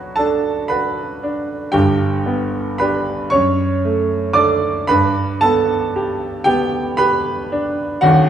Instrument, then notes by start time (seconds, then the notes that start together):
grand piano
Already playing: B2 F#3 F#4 B4 C#5 B5 C#6
0.16 D4 A4 A5
0.68 F#4 B4 B5
1.23 D4
1.72 G1 G2 G4 G5
2.26 B3
2.78 D4 G4 B4 B5
3.30 F#2 C#5 C#6
3.85 A3
4.33 D4 A4 D5 D6
4.87 G2 B4 B5
5.41 B3 A4 A5
5.96 G4
6.44 B3 G4 G5
6.97 G4 B4 B5
7.52 D4
8.01 D#1 D#2 F#4 F#5